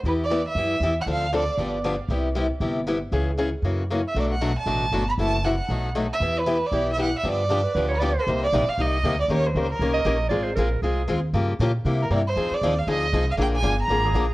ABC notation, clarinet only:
X:1
M:4/4
L:1/8
Q:"Swing" 1/4=234
K:Em
V:1 name="Clarinet"
z8 | z8 | z8 | z8 |
z8 | z8 | z8 | z2 G B B ^c d2 |
[K:Cm] z8 | z4 z e3 | d c B2 A4 | z8 |
z8 | z4 z A3 |]